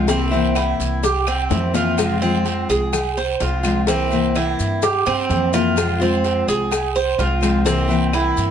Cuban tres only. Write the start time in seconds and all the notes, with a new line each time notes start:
0.09 C4
0.56 E4
1.04 G4
1.28 C4
1.75 F4
2.22 C4
2.70 G#4
3.17 C5
3.41 F4
3.88 C4
4.36 E4
4.83 G4
5.06 C4
5.54 F4
6.02 C4
6.48 G#4
6.96 C5
7.19 F4
7.66 C4
8.13 E4